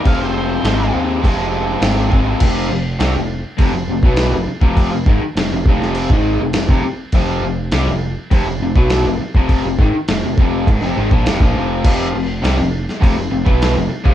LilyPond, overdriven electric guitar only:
\new Staff \with { instrumentName = "Overdriven electric guitar" } { \clef bass \time 4/4 \key f \minor \tempo 4 = 102 <f, c f aes c'>4 <f, c f aes c'>8 <f, c f aes c'>8 <f, c f aes c'>4 <f, c f aes c'>8 <f, c f aes c'>8 | <f, c f>8 <f, c>8 <c g>16 <f, c>8 r16 <f, c>16 <f, c>16 <f, c>16 <b, ges b>8 <f, c>16 r16 <f, c f>16~ | <f, c f>16 <f, c>16 <aes, ees>16 r16 <f, c>16 <f, c>16 <f, c f>8. <aes, ees aes>8 <f, c>16 <f, c>16 <f, c>16 r8 | <f, c f>8 <f, c>8 <c g>16 <f, c>8 r16 <f, c>16 <f, c>16 <f, c>16 <b, ges b>8 <f, c>16 r16 <f, c f>16~ |
<f, c f>16 <f, c>16 <aes, ees>16 r16 <f, c>16 <f, c>16 <f, c f>8 <aes, ees>16 <f, c>16 <aes, ees>16 <bes, f>16 <f, c>16 <bes, f>16 <f, c f>8 | <f, c f>8 <f, c>8 <c g>16 <f, c>8 r16 <f, c>16 <f, c>16 <f, c>16 <b, ges b>8 <f, c>16 r16 <f, c f>16 | }